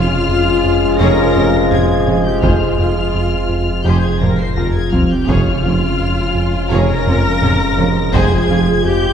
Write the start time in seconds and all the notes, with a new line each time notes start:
Already playing: F1 F2 F3 G#3 C#4 F4 F6
0.29 F2
0.64 F2
0.99 F1 F2 C#3 G#4 A#4 C#5 A#6
1.33 F1 F2 C#4 F4
1.70 F1 F2 C#4 F4 G#4 G#6, taiko mid
2.06 F1 F2 F3 G#3 C#4 F4, taiko mid
2.25 G4 G6
2.41 F1 F2 F3 C4 F4 G#4 C5 F6, taiko
2.78 F1 F2 C4 F4
3.14 F2
3.49 F2
3.84 F1 F2 F3 G4 G#4 C5 G6
4.01 G#4 G#6
4.19 F1 F2 C4 F4 A#4 A#6, taiko mid
4.37 C5 C7
4.55 F1 F2 F4 G#4 A#4 A#6, taiko low-mid
4.73 G#4 G#6
4.91 F1 F2 F3 C4 F4 F6, taiko low
5.10 G4 G6
5.26 F1 F2 C#3 F3 G#3 C#4 F4 G#4 C#5 F6, taiko
5.63 F1 F2 C#4 F4
5.99 F2
6.35 F2
6.71 F1 F2 C#3 G#4 A#4 C#5 A#6
7.07 F1 F2 C#4 F4
7.42 F1 F2 C#4 F4 G#4, taiko mid
7.78 F1 F2 F3 G#3 C#4 F4, taiko mid
8.14 F1 F2 F3 C4 G#4 C5 G#6, taiko
8.49 F1 F2 C4 F4
8.85 F2 G4 G6